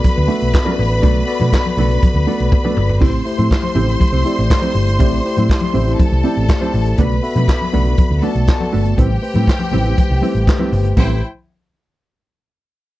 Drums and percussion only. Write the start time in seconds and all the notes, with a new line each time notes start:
0.04 kick, closed hi-hat, muted conga, high conga
0.18 muted conga
0.30 open hi-hat, high conga
0.42 closed hi-hat
0.53 kick, snare, clap, closed hi-hat, muted conga
0.66 muted conga, high conga
0.79 open hi-hat
0.90 closed hi-hat
1.03 kick, closed hi-hat, low conga
1.16 muted conga
1.28 open hi-hat
1.40 closed hi-hat, high conga
1.53 kick, snare, clap, closed hi-hat, muted conga
1.66 high conga
1.78 open hi-hat, high conga, low conga
1.91 closed hi-hat
2.03 kick, closed hi-hat, muted conga, high conga
2.27 open hi-hat, high conga
2.40 closed hi-hat
2.52 kick, high tom
2.64 mid tom, high conga
2.77 mid tom
2.89 floor tom
3.01 kick, splash, muted conga, low conga
3.14 muted conga
3.26 open hi-hat
3.38 closed hi-hat, high conga
3.51 kick, snare, clap, closed hi-hat
3.63 muted conga, high conga
3.75 open hi-hat, high conga, low conga
3.89 closed hi-hat
4.00 kick, closed hi-hat, high conga
4.25 open hi-hat, high conga
4.38 closed hi-hat
4.50 kick, snare, clap, closed hi-hat, muted conga
4.62 muted conga, high conga
4.76 open hi-hat
4.88 closed hi-hat
5.00 kick, closed hi-hat, muted conga, low conga
5.12 muted conga
5.25 open hi-hat
5.37 closed hi-hat, high conga
5.49 kick, snare, clap, closed hi-hat
5.61 muted conga, high conga
5.74 open hi-hat, high conga, low conga
5.87 closed hi-hat
5.99 kick, closed hi-hat, muted conga, high conga
6.12 muted conga
6.25 open hi-hat, high conga
6.37 closed hi-hat
6.48 kick, snare, clap, closed hi-hat, muted conga
6.62 high conga
6.74 open hi-hat
6.86 closed hi-hat
6.98 kick, closed hi-hat, muted conga, low conga
7.13 muted conga
7.24 open hi-hat
7.36 closed hi-hat, high conga
7.48 kick, snare, clap, closed hi-hat
7.62 high conga
7.72 open hi-hat, high conga, low conga
7.85 closed hi-hat
7.97 kick, closed hi-hat, high conga
8.24 open hi-hat, high conga
8.36 closed hi-hat
8.47 kick, snare, clap, closed hi-hat
8.61 muted conga, high conga
8.74 open hi-hat
8.86 closed hi-hat
8.98 kick, closed hi-hat, muted conga, low conga
9.10 muted conga
9.24 open hi-hat
9.34 closed hi-hat, high conga
9.47 kick, snare, clap, closed hi-hat
9.59 muted conga, high conga
9.72 open hi-hat, high conga, low conga
9.85 closed hi-hat
9.97 kick, closed hi-hat, high conga
10.23 open hi-hat, high conga
10.35 closed hi-hat
10.47 kick, snare, clap, closed hi-hat, muted conga
10.59 muted conga, high conga
10.73 open hi-hat, low conga
10.85 closed hi-hat
10.97 kick, crash, high conga